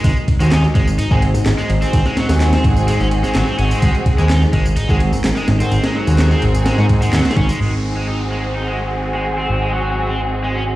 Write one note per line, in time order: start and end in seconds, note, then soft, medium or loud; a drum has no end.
0.00 7.56 G#3 medium
0.00 7.56 D#4 medium
0.04 0.12 G#1 loud
0.04 0.16 G#3 medium
0.04 7.56 G#4 medium
0.04 3.81 C5 medium
0.04 kick loud
0.04 ride medium
0.04 tambourine soft
0.17 tambourine soft
0.28 kick medium
0.28 ride medium
0.40 0.68 D#2 medium
0.40 0.51 G#3 medium
0.40 0.46 C4 medium
0.40 0.46 F#4 medium
0.40 0.46 G#4 medium
0.40 tambourine medium
0.52 0.63 D#4 medium
0.52 snare loud
0.52 clap loud
0.52 ride medium
0.52 tambourine medium
0.64 snare soft
0.64 tambourine soft
0.75 0.98 G#1 medium
0.75 0.86 G#3 medium
0.75 kick loud
0.75 ride medium
0.88 tambourine medium
0.99 1.09 G#1 soft
0.99 1.11 D#4 medium
0.99 ride medium
0.99 tambourine medium
1.11 1.34 G#1 medium
1.11 1.21 G#3 medium
1.11 1.17 C4 medium
1.11 1.17 F#4 medium
1.11 1.17 G#4 loud
1.11 kick loud
1.11 tambourine soft
1.22 ride medium
1.34 1.44 G#1 soft
1.34 snare medium
1.34 tambourine medium
1.46 1.54 G#1 medium
1.46 snare loud
1.46 clap loud
1.46 ride medium
1.46 tambourine soft
1.58 1.69 G#3 loud
1.58 snare medium
1.58 tambourine soft
1.70 1.85 G#1 medium
1.70 ride medium
1.82 1.88 C4 medium
1.82 2.05 C4 medium
1.82 1.88 F#4 medium
1.82 1.88 G#4 medium
1.82 tambourine medium
1.93 2.01 G#1 loud
1.93 kick loud
1.93 ride medium
1.93 tambourine soft
2.06 2.16 G#3 medium
2.06 snare medium
2.06 tambourine soft
2.17 2.52 F#3 medium
2.17 snare loud
2.17 ride medium
2.29 2.57 D#2 medium
2.29 3.56 C4 medium
2.29 3.56 F#4 medium
2.29 3.56 G#4 loud
2.29 snare loud
2.29 ride medium
2.29 tambourine medium
2.41 snare loud
2.41 clap loud
2.41 ride medium
2.41 tambourine medium
2.53 2.64 C4 medium
2.53 snare loud
2.53 ride medium
2.53 tambourine soft
2.64 2.93 G#1 medium
2.64 kick loud
2.64 ride medium
2.77 tambourine medium
2.88 2.99 G#3 medium
2.88 ride medium
2.88 tambourine medium
3.00 3.24 G#1 medium
3.00 3.07 C#4 loud
3.00 snare soft
3.00 tambourine soft
3.11 ride medium
3.24 3.34 G#3 medium
3.24 snare soft
3.24 tambourine medium
3.35 3.43 G#1 medium
3.35 3.47 F#3 medium
3.35 snare loud
3.35 clap loud
3.35 ride medium
3.35 tambourine medium
3.47 3.58 C4 medium
3.47 tambourine soft
3.58 3.74 G#1 loud
3.58 4.15 C4 medium
3.58 3.70 C#4 medium
3.58 4.15 F#4 medium
3.58 4.15 G#4 loud
3.58 ride medium
3.71 3.81 G#3 loud
3.71 ride soft
3.71 tambourine medium
3.82 3.90 G#1 loud
3.82 3.93 G#3 medium
3.82 7.59 A#4 medium
3.82 kick loud
3.82 ride medium
3.82 tambourine soft
3.95 tambourine soft
4.06 kick medium
4.06 ride medium
4.18 4.46 D#2 medium
4.18 4.29 G#3 medium
4.18 4.24 C4 medium
4.18 4.24 F#4 medium
4.18 4.24 G#4 loud
4.18 tambourine medium
4.30 4.41 D#4 medium
4.30 snare loud
4.30 clap loud
4.30 ride medium
4.30 tambourine medium
4.42 snare soft
4.42 tambourine soft
4.53 4.77 G#1 medium
4.53 4.64 G#3 medium
4.53 kick loud
4.53 ride medium
4.66 tambourine medium
4.77 4.87 G#1 soft
4.77 4.89 D#4 medium
4.77 ride medium
4.77 tambourine medium
4.89 5.13 G#1 medium
4.89 4.99 G#3 medium
4.89 4.95 C4 medium
4.89 4.95 F#4 medium
4.89 4.95 G#4 loud
4.89 kick loud
4.89 tambourine soft
5.00 ride medium
5.13 5.22 G#1 soft
5.13 snare medium
5.13 tambourine medium
5.24 5.32 G#1 medium
5.24 snare loud
5.24 clap loud
5.24 ride medium
5.24 tambourine medium
5.36 5.47 G#3 loud
5.36 snare medium
5.36 tambourine soft
5.48 5.63 G#1 medium
5.48 snare loud
5.48 ride medium
5.60 5.66 C4 medium
5.60 5.83 C4 medium
5.60 5.66 F#4 medium
5.60 5.66 G#4 medium
5.60 snare soft
5.60 tambourine medium
5.71 5.79 G#1 loud
5.71 ride medium
5.71 tambourine medium
5.84 5.94 G#3 medium
5.84 snare loud
5.84 ride medium
5.84 tambourine soft
5.95 6.30 F#3 medium
5.95 snare soft
6.07 6.35 D#2 medium
6.07 7.34 C4 medium
6.07 7.34 F#4 medium
6.07 7.34 G#4 loud
6.07 ride medium
6.07 tambourine medium
6.18 snare loud
6.18 clap loud
6.18 ride medium
6.18 tambourine medium
6.31 6.42 C4 medium
6.31 snare medium
6.31 tambourine soft
6.42 6.71 G#1 medium
6.42 ride medium
6.55 tambourine medium
6.66 6.77 G#3 medium
6.66 snare loud
6.66 ride medium
6.66 tambourine medium
6.78 7.02 G#2 loud
6.78 6.85 C#4 loud
6.78 snare soft
6.78 tambourine soft
6.89 kick medium
6.89 ride medium
7.02 7.11 D#2 soft
7.02 7.12 G#3 medium
7.02 tambourine medium
7.13 7.21 D#2 loud
7.13 7.25 F#3 medium
7.13 snare medium
7.13 clap loud
7.13 ride medium
7.13 tambourine medium
7.19 snare medium
7.19 ride medium
7.25 7.36 C4 medium
7.25 snare medium
7.25 ride medium
7.25 tambourine soft
7.31 snare medium
7.31 ride medium
7.37 7.52 G#1 loud
7.37 7.48 C#4 medium
7.37 kick medium
7.37 ride medium
7.49 7.59 G#3 loud
7.49 tambourine medium
7.60 9.47 G#1 medium
7.60 7.71 G#3 medium
7.60 10.76 C4 medium
7.60 10.76 F#4 medium
7.60 10.76 G#4 medium
7.60 10.76 C5 medium
7.60 10.76 D#5 medium
7.60 10.76 G#5 medium
7.60 downlifter medium
7.96 8.06 G#3 medium
8.08 8.19 D#4 medium
8.32 8.42 G#3 medium
8.55 8.67 D#4 medium
8.68 8.78 G#3 medium
9.14 9.25 G#3 medium
9.38 9.60 C4 medium
9.49 10.76 G#1 medium
9.62 9.72 G#3 medium
9.73 10.08 F#3 medium
10.09 10.20 C4 medium
10.44 10.55 G#3 medium
10.56 10.62 C#4 medium